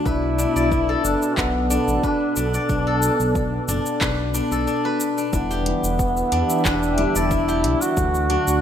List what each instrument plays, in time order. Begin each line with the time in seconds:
Already playing: guzheng D4 A4 F#5, analog synth pad F#4 D5
0.05 analog synth bass B1, analog synth pad B2, duduk E4, guzheng B4, kick, shaker
0.29 analog synth pad B3
0.38 guzheng D4, shaker
0.56 analog synth bass B1, guzheng D5, shaker
0.66 analog synth pad A4
0.71 guzheng D4, kick, shaker
0.89 guzheng A4
1.05 analog synth bass F#1, duduk D4, shaker
1.22 shaker
1.38 analog synth bass B1, duduk B3, kick, clap, shaker
1.70 guzheng D4, shaker
1.88 analog synth bass A1, shaker
2.03 duduk D4, guzheng B4, kick, shaker
2.36 analog synth bass B1, guzheng D4, duduk D4, shaker
2.54 guzheng D5, shaker
2.69 analog synth bass B1, guzheng D4, kick, shaker
2.87 guzheng A4
3.02 shaker
3.20 analog synth bass B1, shaker
3.35 kick, shaker
3.68 analog synth bass F#1, guzheng D4, shaker
3.86 shaker
4.01 analog synth bass B1, guzheng B4, kick, clap, shaker
4.34 guzheng D4, shaker
4.52 analog synth bass B1, guzheng A4, shaker
4.67 guzheng D4, shaker
4.85 guzheng B4
5.00 shaker
5.18 guzheng D4, shaker
5.32 analog synth bass E1, felt piano D3 G3 B3 E4, analog synth pad E3, duduk B3, guzheng D4, kick, shaker
5.47 analog synth pad D4, guzheng G4
5.51 shaker
5.64 felt piano D3 G3 B3, closed hi-hat
5.68 felt piano E4
5.78 analog synth pad E5
5.84 analog synth bass E1, shaker
5.99 kick, shaker
6.15 analog synth pad G4, shaker
6.32 analog synth bass E2, guzheng D4, closed hi-hat
6.50 shaker
6.65 analog synth bass E1, duduk D4, guzheng B4, kick, clap, shaker
6.83 shaker
6.96 felt piano D3 G3 B3 E4, guzheng D4, closed hi-hat
7.16 analog synth bass E1, duduk E4, guzheng D5, shaker
7.31 guzheng D4, kick, shaker
7.48 guzheng G4, shaker
7.64 analog synth bass B1, closed hi-hat
7.82 duduk F#4, shaker
7.96 analog synth bass D2, felt piano D3 F#3 A3 B4, analog synth pad D3, kick, shaker
8.15 shaker
8.29 felt piano D3 F#3 A3 A4, guzheng D4, closed hi-hat
8.48 analog synth bass D2, shaker
8.52 analog synth pad A4